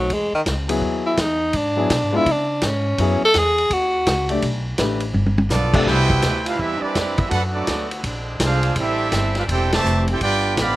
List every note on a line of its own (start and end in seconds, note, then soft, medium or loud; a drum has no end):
0.00 0.15 F#3 medium
0.09 0.31 E2 medium
0.09 0.34 G#3 loud
0.09 kick soft
0.09 ride medium
0.32 0.42 D#3 medium
0.32 muted upright bass stroke soft
0.46 0.81 C#2 medium
0.46 kick soft
0.46 snare medium
0.46 hi-hat pedal medium
0.46 ride medium
0.68 1.15 F#3 medium
0.68 1.15 B3 medium
0.68 1.16 E4 medium
0.68 1.16 G#4 medium
0.68 ride medium
0.81 1.17 D#2 medium
0.81 kick soft
1.06 1.22 E4 medium
1.17 1.53 E2 loud
1.17 1.58 D#4 medium
1.17 kick soft
1.17 snare medium
1.17 hi-hat pedal medium
1.17 ride medium
1.53 1.89 G#2 medium
1.53 2.17 D4 medium
1.53 kick soft
1.53 ride medium
1.76 1.88 F#3 medium
1.76 1.89 B3 medium
1.76 1.89 E4 medium
1.76 1.89 G#4 medium
1.90 2.03 B2 medium
1.90 kick soft
1.90 snare medium
1.90 hi-hat pedal medium
1.90 ride medium
2.03 2.14 G#2 medium
2.12 2.25 F#2 medium
2.12 2.24 G#3 medium
2.12 2.25 B3 medium
2.12 2.25 D4 medium
2.12 2.32 E4 loud
2.12 2.25 F4 medium
2.26 2.61 C#3 loud
2.26 kick soft
2.26 ride medium
2.31 2.68 D4 medium
2.62 2.97 G#2 loud
2.62 kick soft
2.62 snare medium
2.62 hi-hat pedal medium
2.62 ride medium
2.67 3.24 C#4 medium
2.98 3.20 F#2 loud
2.98 3.19 F#3 medium
2.98 3.20 B3 medium
2.98 3.20 E4 medium
2.98 3.20 G#4 medium
2.98 kick soft
2.98 ride medium
3.22 3.40 A4 loud
3.22 muted upright bass stroke soft
3.34 3.70 E2 medium
3.34 kick soft
3.34 snare medium
3.34 hi-hat pedal medium
3.34 ride medium
3.39 3.75 G#4 loud
3.58 ride medium
3.70 4.05 D#2 loud
3.70 4.31 F#4 loud
3.70 kick soft
3.70 ride medium
4.06 4.42 C#2 loud
4.06 kick soft
4.06 snare medium
4.06 hi-hat pedal medium
4.06 ride medium
4.29 4.42 A3 medium
4.29 4.42 D4 medium
4.29 4.42 G4 medium
4.29 4.42 D5 medium
4.29 ride medium
4.42 4.78 B1 medium
4.42 kick soft
4.42 ride medium
4.78 5.13 A1 medium
4.78 4.99 A3 medium
4.78 5.00 D4 medium
4.78 5.00 G4 medium
4.78 5.00 B4 medium
4.78 kick soft
4.78 snare medium
4.78 hi-hat pedal medium
4.78 ride medium
5.00 ride medium
5.13 5.48 G1 medium
5.13 high tom medium
5.26 high tom medium
5.38 high tom loud
5.49 5.85 B1 loud
5.49 5.85 F3 medium
5.49 5.85 B3 medium
5.49 5.86 B3 medium
5.49 5.86 D4 medium
5.49 5.84 F4 medium
5.49 5.85 A4 medium
5.49 5.84 D5 loud
5.49 snare medium
5.49 hi-hat pedal medium
5.73 5.85 C3 medium
5.73 5.86 A3 medium
5.73 5.86 D4 medium
5.73 5.86 G4 medium
5.73 5.86 A4 medium
5.73 kick medium
5.73 crash loud
5.85 6.22 C2 medium
5.85 6.41 B2 loud
5.85 7.29 E3 medium
5.85 7.30 G3 medium
5.85 6.41 E4 loud
5.85 7.30 E4 medium
5.85 6.43 E4 loud
5.85 6.42 G4 medium
5.85 6.42 B4 loud
5.85 6.43 C5 loud
5.85 6.43 G5 loud
5.85 kick soft
5.85 snare soft
6.10 kick medium
6.22 6.58 D2 medium
6.22 kick soft
6.22 snare medium
6.22 hi-hat pedal medium
6.22 ride medium
6.46 6.59 D4 medium
6.46 6.58 F4 medium
6.46 6.58 G4 medium
6.46 6.59 B4 medium
6.46 6.59 F5 medium
6.46 ride medium
6.59 6.80 E2 loud
6.59 6.78 G3 medium
6.59 6.83 B3 medium
6.59 6.80 C4 medium
6.59 6.82 E4 medium
6.59 6.81 G4 medium
6.59 6.81 B4 medium
6.59 6.83 E5 loud
6.59 kick soft
6.79 7.16 G3 medium
6.79 7.17 C4 medium
6.79 7.18 C4 medium
6.79 7.17 D4 medium
6.79 7.18 G4 medium
6.79 7.19 B4 medium
6.79 7.18 D5 loud
6.79 muted upright bass stroke soft
6.95 7.30 F2 loud
6.95 kick soft
6.95 snare medium
6.95 hi-hat pedal medium
6.95 ride medium
7.16 7.31 G3 medium
7.16 7.31 B3 medium
7.16 7.32 C4 medium
7.16 7.31 E4 medium
7.16 7.32 G4 medium
7.16 7.31 B4 medium
7.16 7.32 E5 medium
7.16 kick medium
7.16 ride medium
7.29 7.66 F#2 medium
7.29 8.03 D3 medium
7.29 7.41 A3 medium
7.29 8.04 A3 medium
7.29 8.04 B3 medium
7.29 7.40 D4 medium
7.29 7.43 D4 medium
7.29 7.40 F#4 medium
7.29 8.04 F#4 medium
7.29 7.42 A4 medium
7.29 7.42 B4 medium
7.29 7.42 F#5 loud
7.29 kick soft
7.29 ride medium
7.53 7.88 F#3 medium
7.53 7.88 A3 medium
7.53 7.88 B3 medium
7.53 7.88 D4 medium
7.53 7.88 F#4 medium
7.53 7.87 A4 medium
7.53 7.88 D5 medium
7.67 8.03 D2 medium
7.67 kick soft
7.67 snare medium
7.67 hi-hat pedal medium
7.67 ride medium
7.91 ride medium
8.03 8.39 A#1 loud
8.03 8.76 D3 medium
8.03 8.76 G#3 medium
8.03 10.18 C4 medium
8.03 10.19 D4 medium
8.03 kick soft
8.03 ride medium
8.39 8.75 C2 loud
8.39 8.75 G#3 medium
8.39 8.75 D4 medium
8.39 8.75 F4 medium
8.39 kick soft
8.39 snare medium
8.39 hi-hat pedal medium
8.39 ride medium
8.43 8.76 D4 medium
8.43 8.76 G#4 medium
8.43 8.76 C5 medium
8.43 8.76 F5 loud
8.63 ride medium
8.76 9.11 A1 medium
8.76 10.20 E3 medium
8.76 9.32 G3 medium
8.76 10.20 A3 medium
8.76 9.32 C4 medium
8.76 9.33 E4 medium
8.76 9.33 G4 loud
8.76 kick soft
8.76 ride medium
8.80 9.33 C4 loud
8.80 9.34 A4 loud
8.80 9.33 E5 loud
9.12 9.47 G1 loud
9.12 kick soft
9.12 snare medium
9.12 hi-hat pedal medium
9.12 ride medium
9.35 9.43 D4 medium
9.35 9.44 F4 medium
9.35 9.44 G4 medium
9.35 9.44 B4 medium
9.35 9.43 F5 medium
9.35 snare soft
9.35 ride medium
9.48 9.83 E1 medium
9.48 9.72 C4 medium
9.48 9.71 E4 medium
9.48 9.72 E4 medium
9.48 9.71 A4 loud
9.48 9.71 C5 medium
9.48 9.71 G5 loud
9.48 kick soft
9.48 ride medium
9.52 9.72 G4 loud
9.72 10.07 C3 medium
9.72 10.07 E3 medium
9.72 10.07 A3 medium
9.72 10.05 G4 medium
9.72 10.06 C5 loud
9.72 10.06 E5 loud
9.72 10.06 A5 loud
9.72 snare loud
9.72 ride medium
9.84 10.19 F1 loud
9.84 hi-hat pedal medium
10.08 10.22 C4 medium
10.08 10.23 E4 medium
10.08 10.22 G4 medium
10.08 ride medium
10.12 10.23 E4 medium
10.12 10.23 A4 medium
10.12 10.23 C5 medium
10.12 10.21 G5 loud
10.21 10.56 G1 medium
10.21 10.76 F3 medium
10.21 10.76 B3 medium
10.21 10.56 B3 medium
10.21 10.76 D4 medium
10.21 10.56 D4 medium
10.21 10.55 F4 loud
10.21 10.76 G4 medium
10.21 10.56 G4 medium
10.21 10.56 B4 loud
10.21 10.55 D5 loud
10.21 10.55 G5 loud
10.21 kick soft
10.21 ride medium
10.57 10.76 A1 medium
10.57 10.76 D3 loud
10.57 10.76 F3 loud
10.57 10.76 B3 loud
10.57 10.76 G4 loud
10.57 10.76 D5 loud
10.57 10.76 F5 loud
10.57 10.76 B5 loud
10.57 kick soft
10.57 snare medium
10.57 hi-hat pedal medium
10.57 ride medium